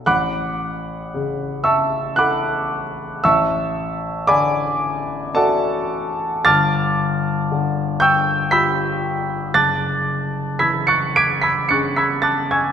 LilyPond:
<<
  \new Staff \with { instrumentName = "Grand piano" } { \time 3/4 \key a \major \tempo 4 = 57 <fis'' b'' d''' fis'''>4. <e'' a'' cis''' e'''>8 <fis'' b'' d''' fis'''>4 | <e'' a'' cis''' e'''>4 <d'' gis'' b'' d'''>4 <a' d'' fis'' a''>4 | <a'' d''' f''' a'''>4. <g'' cis''' e''' g'''>8 <b'' e''' g''' b'''>4 | <a'' d''' fis''' a'''>4 <b'' e''' gis''' b'''>16 <cis''' fis''' a''' cis''''>16 <d''' gis''' b''' d''''>16 <b'' e''' gis''' b'''>16 <cis''' fis''' a''' cis''''>16 <b'' e''' gis''' b'''>16 <a'' d''' fis''' a'''>16 <gis'' cis''' e''' gis'''>16 | }
  \new Staff \with { instrumentName = "Grand piano" } { \clef bass \time 3/4 \key a \major a,,4 cis4 <e' a'>4 | a,,4 d4 <e' fis'>4 | g,,4 d4 <f' g'>4 | fis,,4 e4 <cis' gis'>4 | }
>>